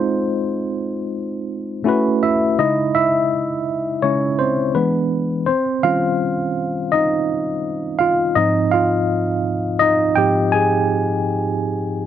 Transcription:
Already playing: G#3 C4 D#4 F4 C5
1.84 A3 C#4 E4 F#4
1.89 B4
2.23 E4 E5
2.59 C#3 G#3 D#4 E4 D#5
2.95 E4 E5
4.02 C#3 G#3 C#4 E4 C#5
4.39 C4 C5
4.75 E3 G#3 B3 D4 B4
5.46 C4 C5
5.83 D#3 G3 C#4 F4 F5
6.92 D#4 D#5
7.99 F4 F5
8.35 G#2 F3 C4 D#4 D#5
8.72 F4 F5
9.79 D#4 D#5
10.16 G#2 F3 C4 G4 G5
10.52 G#4 G#5

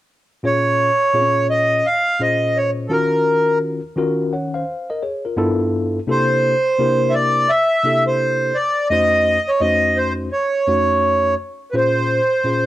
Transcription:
0.43 A#2 C#4 F4 G#4 C#5
1.13 A#2 C4 F4 G#4 C#5
1.21 C#4
1.50 D#5
1.86 F5
2.19 A#2 C#4 F4 G#4 C5 D#5
2.57 C#5
2.88 D#3 C#4 F4 F#4 A4 A#4
2.93 A#4
3.96 D#3 C#4 F4 F#4 A#4
4.33 C#5 F#5
4.54 C5 F5
4.90 A#4 D#5
5.03 G#4 C#5
5.25 F4 A#4
5.36 G2 B3 D4 E4 F4 A4
6.07 C3 A#3 D4 E4 G4 A4 C5
6.78 C3 A#3 D4 E4 G4 A#4
7.10 E5
7.14 D5
7.50 E5
7.84 C3 A#3 D4 E4 G4 A4
8.07 C5
8.55 D5
8.90 F2 A3 C#4 D#4 F#4 C5 D#5
9.48 C#5
9.60 F2 A3 C#4 D#4 F#4 C5 D#5
9.97 C5
10.32 C#5
10.67 F2 A3 C#4 D#4 F#4 C#5
11.71 A#2 C#4 F4 G#4 B4
11.75 C5
12.44 A#2 C#4 F4 G#4 C5

